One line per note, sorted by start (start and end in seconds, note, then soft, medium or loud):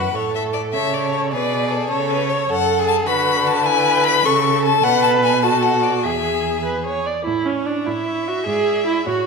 0.00 0.14 F#2 medium
0.00 0.15 B4 medium
0.00 0.17 F#5 medium
0.14 0.75 A2 soft
0.14 0.76 A4 medium
0.14 0.70 A4 soft
0.14 0.35 C#5 medium
0.35 0.43 E5 medium
0.53 0.61 D5 medium
0.73 1.33 C#3 medium
0.73 1.35 A4 soft
0.73 1.31 C#5 medium
0.73 0.95 E5 medium
0.94 1.12 D5 medium
1.12 1.20 C#5 medium
1.32 1.91 B2 medium
1.32 1.92 G#4 medium
1.32 1.72 B4 medium
1.32 1.90 D5 medium
1.71 1.89 A4 medium
1.90 2.49 C#3 medium
1.90 2.11 A4 medium
1.90 2.49 A4 medium
1.90 2.52 C#5 medium
2.10 2.31 B4 medium
2.29 2.49 C#5 medium
2.49 3.04 F#2 medium
2.49 2.81 A4 medium
2.49 3.08 A4 medium
2.49 2.87 F#5 loud
2.79 3.08 G#4 medium
2.88 2.96 A5 loud
3.07 4.23 D3 medium
3.07 3.67 F#4 medium
3.07 3.65 B4 medium
3.07 3.48 B5 medium
3.47 3.67 A5 medium
3.65 4.26 E4 medium
3.65 4.27 B4 medium
3.65 4.06 G#5 loud
4.04 4.27 B5 loud
4.25 4.83 C#3 medium
4.25 4.84 A4 medium
4.25 4.85 A4 medium
4.25 4.64 C#6 loud
4.64 4.85 A5 loud
4.83 6.06 B2 medium
4.83 5.40 A4 medium
4.83 5.45 B4 medium
4.83 5.03 F#5 loud
5.03 5.11 A5 loud
5.23 5.42 G#5 medium
5.42 6.07 F#4 medium
5.42 6.03 A4 medium
5.42 5.64 A5 medium
5.63 5.85 F#5 medium
5.83 6.05 D5 medium
6.03 7.07 E2 medium
6.03 7.04 G#4 medium
6.03 6.62 G#4 medium
6.03 6.65 E5 medium
6.65 6.84 B4 soft
6.86 7.07 C#5 medium
7.06 7.25 D5 soft
7.25 7.77 A2 medium
7.25 7.47 E4 medium
7.46 7.68 C#4 medium
7.46 8.05 C#5 soft
7.66 7.88 D4 soft
7.86 8.37 A2 medium
7.86 8.29 E4 soft
7.86 9.08 E5 medium
8.07 8.46 C#5 soft
8.28 8.46 F#4 medium
8.46 8.96 G#2 medium
8.46 8.85 G#4 medium
8.46 8.66 D5 soft
8.66 9.05 D5 soft
8.87 9.06 E4 medium
9.06 9.27 A2 medium
9.06 9.27 F#4 medium
9.06 9.25 C#5 soft
9.06 9.27 C#5 medium